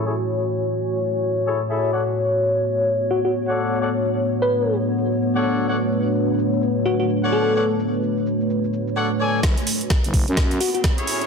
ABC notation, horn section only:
X:1
M:4/4
L:1/16
Q:"Swing 16ths" 1/4=128
K:Bdor
V:1 name="Horn section"
[EGAc] z8 z3 [EGAc] z [EGAe]2 | [Acdf] z12 [Acdf]3 | [Acdf] z12 [Acdf]3 | [Acdf] z12 [Acdf]3 |
[Acdf] z8 z3 [Acdf] z [Acdg]2 | [EGAc] z12 [EGAc]3 |]